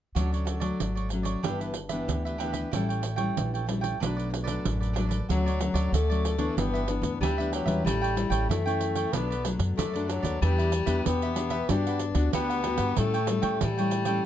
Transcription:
0.15 D2 D3 F#3 A3 C#4 F#4 A4 C#5 D5, pandeiro
0.33 A4 C#5 D5, pandeiro
0.45 F#4 A4 C#5 D5, pandeiro
0.60 F#3 A3 A4 C#5 D5, pandeiro
0.80 G#1, pandeiro
0.95 A4 C#5 D5, pandeiro
1.09 F#3, muted cavaquinho stroke, pandeiro
1.13 A3 C#4
1.23 A4 C#5 D5, pandeiro
1.43 G1 G2 E3 B3 D4 G4 B4 E5, pandeiro
1.47 D4
1.60 G4 B4 E5, pandeiro
1.74 muted cavaquinho stroke, pandeiro
1.89 E3 B3 D4 G4 B4 E5, pandeiro
2.08 D2 D3, pandeiro
2.25 G4 B4 E5, pandeiro
2.38 E3 B3 D4 G4 B4 E5, pandeiro
2.53 G4 B4 E5, pandeiro
2.71 A1 A2 G3 E4 A4 C#5 G5, pandeiro
2.76 C#4 E4
2.89 A4 C#5 G5, pandeiro
3.02 E4 A4 C#5 G5, pandeiro
3.16 G3 C#4 E4 A4 C#5 G5, pandeiro
3.37 A#1 E3, pandeiro
3.54 A4 C#5 G5, pandeiro
3.66 G3 C#4 E4, muted cavaquinho stroke, pandeiro
3.81 A4 C#5 G5, pandeiro
4.00 B1 B2 F#3 A3 D4 A4 B4 D5, pandeiro
4.17 A4 B4 D5, pandeiro
4.30 muted cavaquinho stroke, pandeiro
4.44 A4 B4 D5, pandeiro
4.48 F#3 A3 D4
4.65 A1 F#2, pandeiro
4.80 A4 B4 D5, pandeiro
4.93 F#3 D4 A4 B4 D5, pandeiro
4.98 A3 D4
5.09 A4 B4 D5, pandeiro
5.29 D2 D3 F#3 A3 C#4 F#4 A4 C#5 D5, pandeiro
5.46 A4 C#5 D5, pandeiro
5.59 F#3 A3 C#4, muted cavaquinho stroke, pandeiro
5.74 D2 A4 C#5 D5, pandeiro
5.93 D2 A2 A3 F#4 A4 C#5 D5, pandeiro
6.10 F#3 A3 C#4 A4 C#5 D5, pandeiro
6.25 pandeiro
6.38 E3 B3 D4 A4 C#5 D5, pandeiro
6.57 G1 G2 B3 D4 G4 B4 E5, pandeiro
6.74 G4 B4 E5, pandeiro
6.88 E3 B3 D4, muted cavaquinho stroke, pandeiro
7.02 D2, pandeiro
7.21 D2 D3 G3 D4 G4 B4 E5, pandeiro
7.38 E3 B3 D4 G4 B4 E5, pandeiro
7.52 F#3 D4 G4 B4 E5, pandeiro
7.66 E2 G3 C#4 E4 G4 B4 E5, pandeiro
7.85 A1 A2 G3 E4 A4 C#5 G5, pandeiro
8.02 A4 C#5 G5, pandeiro
8.15 G3 C#4 E4, muted cavaquinho stroke, pandeiro
8.30 A1 A4 C#5 G5, pandeiro
8.49 F#2 E3 A3 E4 A4 C#5 G5, pandeiro
8.66 C#4 E4 A4 C#5 G5, pandeiro
8.81 pandeiro
8.95 A4 C#5 G5, pandeiro
9.13 B1 B2 F#3 A3 B3 D4 A4 B4 D5, pandeiro
9.30 A4 B4 D5, pandeiro
9.44 F#3 A3 D4, muted cavaquinho stroke, pandeiro
9.59 F#2, pandeiro
9.77 F#2 A3 D4 A4 B4 D5, pandeiro
9.93 F#3 A3 D4 A4 B4 D5, pandeiro
10.08 F#3 D4 A4 B4 D5, pandeiro
10.23 D#2 A4 B4 D5, pandeiro
10.41 E2 E3 G3 B3 D4 G4 B4 E5, pandeiro
10.58 G4 B4 E5, pandeiro
10.72 muted cavaquinho stroke, pandeiro
10.86 E2 B3 D4 G4 B4 E5, pandeiro
11.06 E2 B2 B3 D4 G4 B4 E5, pandeiro
11.22 G4 B4 E5, pandeiro
11.35 B3 D4 G4, pandeiro
11.50 G4 B4 E5, pandeiro
11.69 G2 G3 B3 D4 F#4 G4 B4 F#5, pandeiro
11.87 G4 B4 F#5, pandeiro
11.99 muted cavaquinho stroke, pandeiro
12.15 D2 B3 D4 F#4, pandeiro
12.33 D2 D3 B3 D4 G4 B4 F#5, pandeiro
12.50 G4 B4 F#5, pandeiro
12.63 B3 D4 F#4 G4 B4 F#5, pandeiro
12.78 G2 G4 B4 F#5, pandeiro
12.96 A2 G3 A3 C#4 E4 A4 C#5 G5, pandeiro
13.14 A4 C#5 G5, pandeiro
13.27 G3 C#4 E4, muted cavaquinho stroke, pandeiro
13.42 A2 A4 C#5 G5, pandeiro
13.61 A2 E3 G3 E4 A4 C#5 G5, pandeiro
13.78 G3 C#4 E4 A4 C#5 G5, pandeiro
13.91 pandeiro
14.05 G3 C#4 E4 A4 C#5 G5, pandeiro

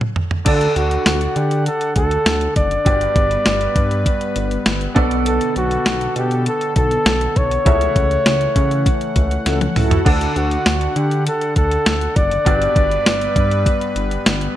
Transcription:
Already playing: C#4 F#4 A4 C#5
0.01 mid tom
0.16 floor tom
0.31 floor tom
0.45 D2 D3 D4 A4 D5 F#5, kick, closed hi-hat, crash
0.61 closed hi-hat
0.76 D2 F#4, closed hi-hat
0.91 closed hi-hat
1.06 D2, snare, closed hi-hat, tambourine
1.21 closed hi-hat
1.36 D3 G4, closed hi-hat
1.51 closed hi-hat
1.66 A4, closed hi-hat
1.81 closed hi-hat
1.96 D2 A4, kick, closed hi-hat
2.11 closed hi-hat
2.26 D2, snare, closed hi-hat, tambourine
2.41 closed hi-hat
2.56 F#1 D5, kick, closed hi-hat
2.71 closed hi-hat
2.85 G1 G2 G3 B3 D4 F#4 G4 B4 D5, kick, closed hi-hat
3.01 closed hi-hat
3.16 G1, kick, closed hi-hat
3.31 closed hi-hat
3.46 G1, snare, closed hi-hat, tambourine
3.61 closed hi-hat
3.76 G2, kick, closed hi-hat
3.91 closed hi-hat
4.06 kick, closed hi-hat
4.21 closed hi-hat
4.36 G1, closed hi-hat
4.51 closed hi-hat
4.66 G1, snare, closed hi-hat, tambourine
4.81 closed hi-hat
4.94 B1 B2 D3 D4 A4 B4 D5 F#5, kick, closed hi-hat
5.11 closed hi-hat
5.26 A4, closed hi-hat
5.41 closed hi-hat
5.56 B1 F#4, closed hi-hat
5.71 closed hi-hat
5.86 B1, snare, closed hi-hat, tambourine
6.01 closed hi-hat
6.16 B2 G4, closed hi-hat
6.31 closed hi-hat
6.46 A4, closed hi-hat
6.61 closed hi-hat
6.76 B1 A4, kick, closed hi-hat
6.91 closed hi-hat
7.06 B1, snare, closed hi-hat, tambourine
7.21 closed hi-hat
7.36 B1 C#5, kick, closed hi-hat
7.51 closed hi-hat
7.65 C#2 C#3 E3 A3 E4 F#4 A4 C#5 E5 F#5, kick, closed hi-hat
7.81 closed hi-hat
7.96 C#2, kick, closed hi-hat
8.11 closed hi-hat
8.26 C#2, snare, closed hi-hat, tambourine
8.41 closed hi-hat
8.56 C#3, kick, closed hi-hat
8.71 closed hi-hat
8.86 kick, closed hi-hat
9.01 closed hi-hat
9.16 C#2, kick, closed hi-hat
9.31 closed hi-hat
9.46 C#2 E4 F#4 A4, snare, closed hi-hat
9.61 closed hi-hat, high tom
9.76 C#2 E4 F#4 A4, mid tom, open hi-hat
9.91 closed hi-hat, floor tom
10.05 D2 D3 D4 A4 D5 F#5, kick, crash
10.21 closed hi-hat
10.36 D2 F#4, closed hi-hat
10.51 closed hi-hat
10.66 D2, snare, closed hi-hat, tambourine
10.81 closed hi-hat
10.96 D3 G4, closed hi-hat
11.11 closed hi-hat
11.27 A4, closed hi-hat
11.41 closed hi-hat
11.56 D2 A4, kick, closed hi-hat
11.71 closed hi-hat
11.86 D2, snare, closed hi-hat, tambourine
12.01 closed hi-hat
12.16 F#1 D5, kick, closed hi-hat
12.31 closed hi-hat
12.45 G1 G2 G3 B3 D4 F#4 G4 B4 D5, kick, closed hi-hat
12.62 closed hi-hat
12.76 G1, kick, closed hi-hat
12.91 closed hi-hat
13.06 G1, snare, closed hi-hat, tambourine
13.21 closed hi-hat
13.36 G2, kick, closed hi-hat
13.51 closed hi-hat
13.66 kick, closed hi-hat
13.81 closed hi-hat
13.96 G1, closed hi-hat
14.11 closed hi-hat
14.26 G1, snare, closed hi-hat, tambourine
14.41 closed hi-hat

